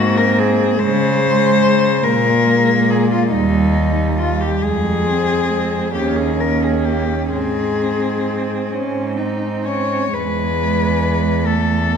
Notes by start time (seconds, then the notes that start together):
Already playing: G#2 A#3 C4 F#4
0.17 A#4
0.39 G#4
0.80 C#3 G#3 C5
1.23 G#3
2.03 A#2 A#3 A#4
2.46 G#3
2.90 G#4
3.11 F4
3.30 D#2 G3 D#4
3.74 G3
4.18 F4
4.41 G4
4.62 F2 G#3 G#4
5.06 C4
5.50 G#3
5.94 D#2 A#3 C#4 G4
6.16 G#4
6.37 C#4 A#4
6.62 G#4
6.84 G4
7.31 G#2 C4 G#4
7.77 C4
8.70 G#2 C#4
9.17 C4 D#4
9.65 C#4 C#5
10.12 E2 G#3 B4
11.45 A3 A4
11.89 B3